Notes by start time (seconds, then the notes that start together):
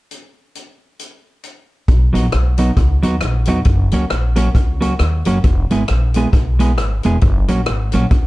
0.11 closed hi-hat
0.55 closed hi-hat
0.99 closed hi-hat
1.44 closed hi-hat
1.88 B1, kick, closed hi-hat
2.13 A#1 F#3 B3 D#4 F#4, closed hi-hat
2.32 B1, cross-stick, closed hi-hat
2.58 F#3 B3 D#4 F#4, closed hi-hat
2.77 C#2, kick, closed hi-hat
3.03 D#2 F#3 B3 D#4 F#4, closed hi-hat
3.21 A#1, cross-stick, closed hi-hat
3.45 E1 F#3 B3 D#4 F#4, closed hi-hat
3.65 F#1, kick, closed hi-hat
3.92 C#2 F#3 A#3 C#4 F#4, closed hi-hat
4.10 A#1, cross-stick, closed hi-hat
4.36 F#3 A#3 C#4 F#4, closed hi-hat
4.55 C#2, kick, closed hi-hat
4.81 F#3 A#3 C#4 F#4, closed hi-hat
4.99 D#2, cross-stick, closed hi-hat
5.25 F#1 F#3 A#3 C#4 F#4, closed hi-hat
5.44 E1, kick, closed hi-hat
5.71 G#1 G#3 B3 E4 G#4, closed hi-hat
5.88 A#1, cross-stick, closed hi-hat
6.14 G#3 B3 E4 G#4, closed hi-hat
6.33 B1, kick, closed hi-hat
6.59 G#3 B3 E4 G#4, closed hi-hat
6.78 G#1, cross-stick, closed hi-hat
7.03 E1 G#3 B3 E4 G#4, closed hi-hat
7.21 F#1, kick, closed hi-hat
7.48 A#1 F#3 A#3 C#4 F#4, closed hi-hat
7.66 G#1, cross-stick, closed hi-hat
7.92 A#1 F#3 A#3 C#4 F#4, closed hi-hat
8.11 C#2, kick, closed hi-hat